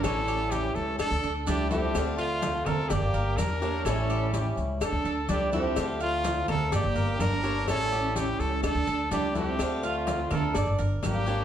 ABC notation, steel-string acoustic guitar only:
X:1
M:4/4
L:1/8
Q:1/4=126
K:Dm
V:1 name="Steel-string acoustic guitar"
[E,G,^CE]4 z2 [F,A,DE] [F,A,DE] | [D,A,CF]4 z2 [G,B,DG] [G,B,DG] | [E,G,^CE]4 z2 [F,A,DE] [F,A,DE] | [D,A,CF]4 z2 [G,B,DG] [G,B,DG] |
[E,G,^CE]4 z2 [F,A,DE] [F,A,DE] | [D,A,CF]4 z2 [G,B,DG] [G,B,DG] |]